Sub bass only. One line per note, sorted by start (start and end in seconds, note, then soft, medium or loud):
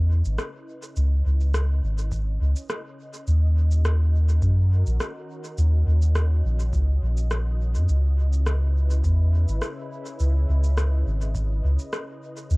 0.00 0.22 E2 medium
0.25 0.37 G#1 loud
0.96 1.22 C#2 medium
1.25 1.80 C#2 medium
1.83 2.38 G#1 medium
2.40 2.54 C#2 medium
3.27 4.40 D#2 loud
4.42 4.84 F#2 medium
4.87 4.99 A#1 loud
5.58 5.83 D#2 medium
5.87 6.42 D#2 medium
6.44 6.72 A#1 medium
6.73 6.99 C#2 loud
7.02 7.76 A#1 loud
7.75 7.87 F#2 medium
7.89 9.02 C#2 medium
9.04 9.45 E2 medium
9.48 9.60 G#1 loud
10.20 10.45 C#2 medium
10.49 11.04 C#2 medium
11.06 11.61 G#1 medium
11.64 11.77 C#2 medium
12.50 12.57 D#2 loud